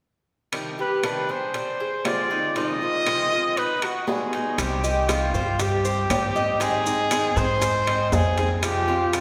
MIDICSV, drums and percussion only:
0, 0, Header, 1, 2, 480
1, 0, Start_track
1, 0, Key_signature, -3, "minor"
1, 0, Tempo, 505902
1, 505, Time_signature, 4, 2, 24, 8
1, 8734, End_track
2, 0, Start_track
2, 0, Title_t, "Drums"
2, 497, Note_on_c, 9, 75, 59
2, 500, Note_on_c, 9, 65, 86
2, 592, Note_off_c, 9, 75, 0
2, 595, Note_off_c, 9, 65, 0
2, 981, Note_on_c, 9, 75, 64
2, 982, Note_on_c, 9, 65, 88
2, 982, Note_on_c, 9, 66, 62
2, 1076, Note_off_c, 9, 75, 0
2, 1077, Note_off_c, 9, 65, 0
2, 1077, Note_off_c, 9, 66, 0
2, 1464, Note_on_c, 9, 65, 64
2, 1559, Note_off_c, 9, 65, 0
2, 1942, Note_on_c, 9, 75, 57
2, 1947, Note_on_c, 9, 65, 85
2, 1947, Note_on_c, 9, 66, 74
2, 2037, Note_off_c, 9, 75, 0
2, 2042, Note_off_c, 9, 65, 0
2, 2042, Note_off_c, 9, 66, 0
2, 2428, Note_on_c, 9, 65, 62
2, 2523, Note_off_c, 9, 65, 0
2, 2908, Note_on_c, 9, 75, 63
2, 2909, Note_on_c, 9, 65, 89
2, 2909, Note_on_c, 9, 66, 58
2, 3003, Note_off_c, 9, 75, 0
2, 3004, Note_off_c, 9, 65, 0
2, 3004, Note_off_c, 9, 66, 0
2, 3390, Note_on_c, 9, 65, 66
2, 3485, Note_off_c, 9, 65, 0
2, 3627, Note_on_c, 9, 65, 80
2, 3629, Note_on_c, 9, 75, 64
2, 3722, Note_off_c, 9, 65, 0
2, 3724, Note_off_c, 9, 75, 0
2, 3868, Note_on_c, 9, 66, 77
2, 3963, Note_off_c, 9, 66, 0
2, 4108, Note_on_c, 9, 65, 59
2, 4203, Note_off_c, 9, 65, 0
2, 4347, Note_on_c, 9, 75, 64
2, 4349, Note_on_c, 9, 60, 70
2, 4351, Note_on_c, 9, 65, 86
2, 4351, Note_on_c, 9, 70, 62
2, 4442, Note_off_c, 9, 75, 0
2, 4444, Note_off_c, 9, 60, 0
2, 4446, Note_off_c, 9, 65, 0
2, 4446, Note_off_c, 9, 70, 0
2, 4592, Note_on_c, 9, 60, 33
2, 4592, Note_on_c, 9, 70, 58
2, 4687, Note_off_c, 9, 60, 0
2, 4687, Note_off_c, 9, 70, 0
2, 4826, Note_on_c, 9, 75, 64
2, 4830, Note_on_c, 9, 65, 94
2, 4830, Note_on_c, 9, 66, 67
2, 4831, Note_on_c, 9, 60, 54
2, 4832, Note_on_c, 9, 70, 69
2, 4920, Note_off_c, 9, 75, 0
2, 4924, Note_off_c, 9, 65, 0
2, 4924, Note_off_c, 9, 66, 0
2, 4926, Note_off_c, 9, 60, 0
2, 4927, Note_off_c, 9, 70, 0
2, 5069, Note_on_c, 9, 70, 26
2, 5071, Note_on_c, 9, 60, 34
2, 5164, Note_off_c, 9, 70, 0
2, 5166, Note_off_c, 9, 60, 0
2, 5308, Note_on_c, 9, 70, 62
2, 5309, Note_on_c, 9, 60, 64
2, 5309, Note_on_c, 9, 65, 69
2, 5403, Note_off_c, 9, 70, 0
2, 5404, Note_off_c, 9, 60, 0
2, 5404, Note_off_c, 9, 65, 0
2, 5549, Note_on_c, 9, 70, 58
2, 5644, Note_off_c, 9, 70, 0
2, 5788, Note_on_c, 9, 75, 62
2, 5789, Note_on_c, 9, 60, 33
2, 5789, Note_on_c, 9, 61, 74
2, 5790, Note_on_c, 9, 65, 87
2, 5790, Note_on_c, 9, 66, 85
2, 5790, Note_on_c, 9, 70, 73
2, 5883, Note_off_c, 9, 75, 0
2, 5884, Note_off_c, 9, 60, 0
2, 5884, Note_off_c, 9, 61, 0
2, 5885, Note_off_c, 9, 65, 0
2, 5885, Note_off_c, 9, 66, 0
2, 5885, Note_off_c, 9, 70, 0
2, 6029, Note_on_c, 9, 60, 31
2, 6033, Note_on_c, 9, 70, 27
2, 6124, Note_off_c, 9, 60, 0
2, 6128, Note_off_c, 9, 70, 0
2, 6263, Note_on_c, 9, 60, 67
2, 6270, Note_on_c, 9, 65, 74
2, 6273, Note_on_c, 9, 70, 62
2, 6358, Note_off_c, 9, 60, 0
2, 6365, Note_off_c, 9, 65, 0
2, 6368, Note_off_c, 9, 70, 0
2, 6506, Note_on_c, 9, 60, 34
2, 6511, Note_on_c, 9, 70, 58
2, 6601, Note_off_c, 9, 60, 0
2, 6606, Note_off_c, 9, 70, 0
2, 6746, Note_on_c, 9, 65, 94
2, 6746, Note_on_c, 9, 66, 64
2, 6746, Note_on_c, 9, 75, 65
2, 6748, Note_on_c, 9, 60, 55
2, 6750, Note_on_c, 9, 70, 73
2, 6841, Note_off_c, 9, 65, 0
2, 6841, Note_off_c, 9, 66, 0
2, 6841, Note_off_c, 9, 75, 0
2, 6843, Note_off_c, 9, 60, 0
2, 6845, Note_off_c, 9, 70, 0
2, 6988, Note_on_c, 9, 70, 29
2, 6991, Note_on_c, 9, 60, 31
2, 7083, Note_off_c, 9, 70, 0
2, 7085, Note_off_c, 9, 60, 0
2, 7226, Note_on_c, 9, 60, 71
2, 7227, Note_on_c, 9, 70, 70
2, 7232, Note_on_c, 9, 65, 69
2, 7321, Note_off_c, 9, 60, 0
2, 7322, Note_off_c, 9, 70, 0
2, 7327, Note_off_c, 9, 65, 0
2, 7466, Note_on_c, 9, 75, 62
2, 7471, Note_on_c, 9, 65, 84
2, 7561, Note_off_c, 9, 75, 0
2, 7566, Note_off_c, 9, 65, 0
2, 7706, Note_on_c, 9, 66, 80
2, 7707, Note_on_c, 9, 60, 32
2, 7707, Note_on_c, 9, 61, 69
2, 7708, Note_on_c, 9, 70, 73
2, 7801, Note_off_c, 9, 66, 0
2, 7802, Note_off_c, 9, 60, 0
2, 7802, Note_off_c, 9, 61, 0
2, 7803, Note_off_c, 9, 70, 0
2, 7943, Note_on_c, 9, 60, 30
2, 7947, Note_on_c, 9, 65, 58
2, 7950, Note_on_c, 9, 70, 28
2, 8037, Note_off_c, 9, 60, 0
2, 8042, Note_off_c, 9, 65, 0
2, 8044, Note_off_c, 9, 70, 0
2, 8185, Note_on_c, 9, 75, 66
2, 8186, Note_on_c, 9, 65, 92
2, 8187, Note_on_c, 9, 60, 68
2, 8189, Note_on_c, 9, 70, 62
2, 8280, Note_off_c, 9, 75, 0
2, 8281, Note_off_c, 9, 60, 0
2, 8281, Note_off_c, 9, 65, 0
2, 8284, Note_off_c, 9, 70, 0
2, 8425, Note_on_c, 9, 60, 35
2, 8520, Note_off_c, 9, 60, 0
2, 8666, Note_on_c, 9, 60, 52
2, 8667, Note_on_c, 9, 65, 104
2, 8667, Note_on_c, 9, 66, 66
2, 8667, Note_on_c, 9, 70, 68
2, 8668, Note_on_c, 9, 75, 68
2, 8734, Note_off_c, 9, 60, 0
2, 8734, Note_off_c, 9, 65, 0
2, 8734, Note_off_c, 9, 66, 0
2, 8734, Note_off_c, 9, 70, 0
2, 8734, Note_off_c, 9, 75, 0
2, 8734, End_track
0, 0, End_of_file